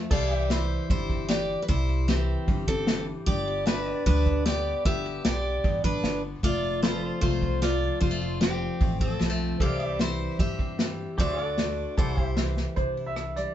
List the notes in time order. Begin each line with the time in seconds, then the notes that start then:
0.11 C2 C3 E3 G3 C4 E4 G4 A4 C5 D5 F5, kick, crash
0.31 E4 E5
0.36 G4
0.50 E3 C4 E4 C5, snare, open hi-hat
0.90 G1 G2 G3 E4 C5, kick, open hi-hat
1.10 C4, kick
1.29 E3 G3 G4 D5, snare, open hi-hat
1.62 B4
1.68 C2 C3 G3 E4 C5, kick, open hi-hat
1.89 E4
2.08 E3 C4 G4, snare, open hi-hat
2.48 G1 G2 G3, kick, open hi-hat
2.68 C4 A4, kick
2.87 E3 G3, snare, open hi-hat
3.26 G1 G2 B3 G4 D5, kick, open hi-hat
3.48 G4
3.66 D3 D4 G4 B4 E5, snare, open hi-hat
3.94 D5
4.06 D2 G2 B3 D4 B4, kick, open hi-hat
4.26 D4, kick
4.45 D3 B3 G4 D5, snare, open hi-hat
4.85 G1 G2 B3 G4 E5, kick, open hi-hat
5.06 G4
5.25 B1 D3 D4 G4 D5, snare, open hi-hat
5.64 A1 G2 B3, kick, open hi-hat
5.84 D4 B4, kick
6.04 G1 D3 B3, snare, open hi-hat
6.43 F1 F2 A3 F4 D5, kick, open hi-hat
6.63 F4
6.82 F3 C4 F4 A4 B4 C5 F5, snare, open hi-hat
7.04 C5
7.21 C2 C3 A3 F4 C5, kick, open hi-hat
7.42 C4, kick
7.62 F3 A3 F4 D5, snare, open hi-hat
8.00 F1 F2 G3 F4 C5, kick, open hi-hat
8.11 A3
8.21 F4
8.41 F3 C4 G4, snare, open hi-hat
8.81 A1 C3 A3, kick, open hi-hat
9.01 C4 A4, kick
9.19 B1 F3 G3, snare, open hi-hat
9.30 A3
9.60 C2 C3 E3 G3 C4 E4 G4 A4 C5 D5 F5, kick, open hi-hat
9.80 E4 E5
9.86 G4
9.99 E3 C4 E4 C5, snare, open hi-hat
10.39 G2 G3 G4 E5, kick, open hi-hat
10.59 C4, kick
10.79 E3 G3, snare, open hi-hat
11.18 D2 D3 A3 D4 F#4 G4 C5 D5 E5, kick, open hi-hat
11.39 F#4
11.43 A4 D5 F#5
11.58 A3 F#4, snare, open hi-hat
11.97 C2 C3 G3 E4 A4 C5 D5 F#5, kick, open hi-hat
12.18 E4, kick
12.23 G4 C5 E5
12.37 E3 C4, snare, open hi-hat
12.57 snare
12.76 C2 C3 D4 C5, kick, closed hi-hat
12.97 E4
13.06 E5
13.16 E3, cross-stick, closed hi-hat
13.36 G3 D5, closed hi-hat